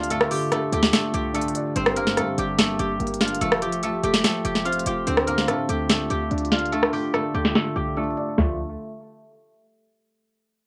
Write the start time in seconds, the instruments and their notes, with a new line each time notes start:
Already playing: 808-style bass D2, felt piano D3 A3 D4 D5, analog synth pad D3 A3 F4, guzheng A3 C4 F4 G4 A4 C5 F5 G5
0.03 closed hi-hat
0.10 felt piano D3, guzheng A3 A4, closed hi-hat
0.21 cross-stick
0.31 felt piano D3, guzheng G4 G5, open hi-hat
0.52 felt piano D3, guzheng A3 A4, cross-stick, closed hi-hat
0.72 808-style bass D2, felt piano A3, guzheng G4 G5, closed hi-hat
0.83 snare
0.93 felt piano D3, guzheng A3 A4, snare, closed hi-hat
1.14 808-style bass C2, guzheng G4 G5, closed hi-hat
1.34 guzheng A3 A4, felt piano D4, closed hi-hat
1.41 closed hi-hat
1.48 closed hi-hat
1.55 felt piano D5, closed hi-hat
1.76 808-style bass G1, felt piano G2, analog synth pad A#3 G4, guzheng C4 C5, closed hi-hat
1.86 cross-stick
1.96 felt piano G2, guzheng A#3 A#4, closed hi-hat
2.07 snare
2.17 808-style bass G2, felt piano G2, guzheng A3 A4, cross-stick, closed hi-hat
2.38 808-style bass G1, felt piano G3, guzheng G4 G5, closed hi-hat
2.58 felt piano G2, guzheng A3 A4, snare, closed hi-hat
2.79 808-style bass G1, guzheng G4 G5, closed hi-hat
3.00 808-style bass G1, felt piano A#3, closed hi-hat
3.07 closed hi-hat
3.14 closed hi-hat
3.21 felt piano D4, guzheng F4 F5, snare, closed hi-hat
3.28 closed hi-hat
3.35 closed hi-hat
3.41 808-style bass F1, analog synth pad F3 A3, felt piano F3, guzheng A3 A4, closed hi-hat
3.52 cross-stick
3.62 felt piano F3, guzheng G4 G5, closed hi-hat, open hi-hat
3.72 closed hi-hat
3.83 felt piano F3, guzheng A3 A4, closed hi-hat
4.04 808-style bass F1, felt piano A3, guzheng G4 G5, closed hi-hat
4.14 snare, closed hi-hat
4.24 felt piano F3, guzheng A3 A4, snare, closed hi-hat
4.45 808-style bass F1, guzheng G4 G5, closed hi-hat
4.55 snare
4.65 felt piano C4, guzheng F4 F5, closed hi-hat
4.73 closed hi-hat
4.79 closed hi-hat
4.86 808-style bass F1, felt piano F4, guzheng G4 G5, closed hi-hat
5.07 808-style bass D2, analog synth pad D3 A3 F4, felt piano D3, guzheng C4 C5, closed hi-hat
5.17 cross-stick
5.27 felt piano D3, guzheng A#3 A#4, closed hi-hat
5.38 snare
5.48 808-style bass A2, felt piano D3, guzheng A3 A4, cross-stick, closed hi-hat
5.69 808-style bass D2, felt piano A3, guzheng G4 G5, closed hi-hat
5.90 felt piano D3, guzheng A3 A4, snare, closed hi-hat
6.10 808-style bass D2, guzheng G4 G5, closed hi-hat
6.31 808-style bass D2, felt piano D4, closed hi-hat
6.38 closed hi-hat
6.45 closed hi-hat
6.52 guzheng F4 F5, felt piano D5, snare, closed hi-hat
6.59 closed hi-hat
6.66 closed hi-hat
6.72 felt piano D3, guzheng A3 A4, closed hi-hat
6.83 cross-stick
6.93 felt piano D3, guzheng G4 G5, open hi-hat
7.13 felt piano D3, guzheng A3 A4, cross-stick, closed hi-hat
7.34 808-style bass D2, felt piano A3, guzheng G4 G5, closed hi-hat
7.45 snare
7.55 felt piano D3, guzheng A3 A4, snare, closed hi-hat
7.76 808-style bass C2, guzheng G4 G5, closed hi-hat
7.97 guzheng A3 A4, felt piano D4, closed hi-hat
8.04 closed hi-hat
8.10 closed hi-hat
8.17 felt piano D5, closed hi-hat
8.38 808-style bass D2, analog synth pad D3 A3 F4, felt piano D3 F3 A3 D4, guzheng A3, snare, floor tom